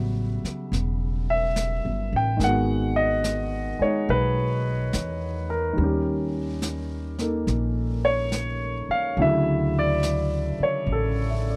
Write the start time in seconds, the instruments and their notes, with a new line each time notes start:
Already playing: upright bass A1, grand piano C#3 F#3 G3 B3 E5
0.44 muted upright bass stroke, snare
0.72 upright bass E1, brush sweep, snare
1.30 grand piano E5
1.56 snare, hi-hat pedal
1.85 upright bass G1
2.13 upright bass A1, grand piano G5
2.37 upright bass G#1, grand piano D#3 G#3, brush sweep, snare
2.44 grand piano B3 F#4 F#5
2.96 grand piano D#5
3.24 snare, hi-hat pedal
3.79 grand piano G#3 D#4 C#5, muted upright bass stroke
4.09 upright bass B1, grand piano B4, brush sweep
4.93 upright bass E2, snare, hi-hat pedal
5.50 grand piano A#4
5.73 grand piano D#3 G3, brush sweep
5.78 upright bass D#2, grand piano C#4
5.84 grand piano G4
6.62 snare, hi-hat pedal
7.18 grand piano A#3 D#4 A4, snare
7.47 upright bass A#1, brush sweep, snare
8.05 grand piano C#5
8.32 snare, hi-hat pedal
8.89 grand piano F5, muted upright bass stroke
9.17 upright bass D2, grand piano C#3 D3 F#3 E4, brush sweep
9.22 grand piano E5
9.79 grand piano D5
10.03 snare, hi-hat pedal
10.59 muted upright bass stroke
10.63 grand piano C#5
10.86 upright bass A1, brush sweep
10.92 grand piano A4
11.30 grand piano E5
11.50 grand piano D5